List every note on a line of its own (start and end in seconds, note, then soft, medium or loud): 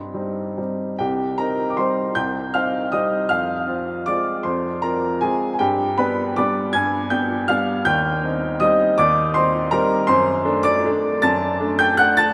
0.00 0.13 G2 soft
0.00 0.53 C5 soft
0.00 0.57 C6 medium
0.14 0.53 G3 soft
0.14 0.54 C4 soft
0.14 0.54 D#4 soft
0.57 0.95 G3 soft
0.57 0.95 C4 soft
0.57 0.96 D#4 soft
0.99 1.37 C2 medium
0.99 1.36 G4 medium
0.99 1.38 G5 medium
1.38 1.73 C4 soft
1.38 1.74 D#4 soft
1.38 1.68 A#4 medium
1.38 1.70 A#5 medium
1.70 1.77 D6 soft
1.77 2.13 G3 soft
1.77 2.13 C4 soft
1.77 2.13 D#4 soft
1.77 2.14 C5 medium
1.77 2.16 C6 medium
2.15 2.53 C2 medium
2.15 2.52 G5 medium
2.15 2.54 G6 medium
2.54 2.90 C4 soft
2.54 2.90 D#4 soft
2.54 2.91 F5 medium
2.54 2.93 F6 medium
2.92 3.27 G3 soft
2.92 3.27 C4 soft
2.92 3.27 D#4 soft
2.92 3.28 D#5 medium
2.92 3.30 D#6 medium
3.29 3.67 F2 medium
3.29 4.03 F5 medium
3.29 4.06 F6 medium
3.67 4.03 C4 soft
3.67 4.03 F4 soft
4.06 4.41 G#3 soft
4.06 4.41 C4 soft
4.06 4.42 F4 soft
4.06 4.42 D5 medium
4.06 4.44 D6 medium
4.43 4.81 F2 medium
4.43 4.79 C5 soft
4.43 4.82 C6 medium
4.82 5.18 C4 soft
4.82 5.18 F4 soft
4.82 5.19 A#4 medium
4.82 5.21 A#5 medium
5.21 5.56 G#3 soft
5.21 5.56 C4 soft
5.21 5.57 F4 medium
5.21 5.51 G#4 medium
5.21 5.52 G#5 medium
5.53 5.60 G#5 medium
5.59 5.97 G2 medium
5.59 5.96 G4 medium
5.59 5.97 G5 medium
5.98 6.33 B3 soft
5.98 6.33 D4 soft
5.98 6.34 B4 medium
5.98 6.37 B5 medium
6.36 6.71 G3 soft
6.36 6.71 B3 soft
6.36 6.71 D4 soft
6.36 6.72 D5 medium
6.36 6.74 D6 medium
6.73 7.10 G2 medium
6.73 7.09 G#5 medium
6.73 7.10 G#6 medium
7.10 7.46 B3 soft
7.10 7.46 D4 medium
7.10 7.47 G5 medium
7.10 7.49 G6 medium
7.48 7.83 G3 soft
7.48 7.83 B3 soft
7.48 7.83 D4 medium
7.48 7.84 F5 medium
7.48 7.86 F6 medium
7.85 8.22 D#2 medium
7.85 8.58 G5 medium
7.85 8.61 G6 loud
8.23 8.58 C4 medium
8.23 8.58 D#4 medium
8.60 8.95 G3 medium
8.60 8.95 C4 medium
8.60 8.95 D#4 medium
8.60 8.96 D#5 medium
8.60 8.98 D#6 medium
8.98 9.35 D#2 medium
8.98 9.33 D5 medium
8.98 9.35 D6 loud
9.34 9.69 C4 medium
9.34 9.69 D#4 medium
9.34 9.70 C5 medium
9.34 9.72 C6 medium
9.71 10.06 G3 medium
9.71 10.06 C4 medium
9.71 10.06 D#4 medium
9.71 10.07 A#4 medium
9.71 10.09 A#5 loud
10.07 10.45 F#2 medium
10.07 10.61 C5 medium
10.07 10.64 C6 loud
10.45 10.80 A3 medium
10.45 10.80 D4 medium
10.63 11.18 D5 medium
10.63 11.22 D6 loud
10.85 11.19 A3 medium
10.85 11.20 D4 medium
11.22 11.59 F#2 medium
11.22 11.75 A5 medium
11.22 11.79 A6 loud
11.60 11.95 A3 medium
11.60 11.95 D4 medium
11.79 11.98 G5 medium
11.79 11.98 G6 loud
11.97 12.33 A3 medium
11.97 12.33 D4 medium
11.97 12.17 F#5 medium
11.97 12.17 F#6 loud
12.17 12.33 A5 medium
12.17 12.33 A6 loud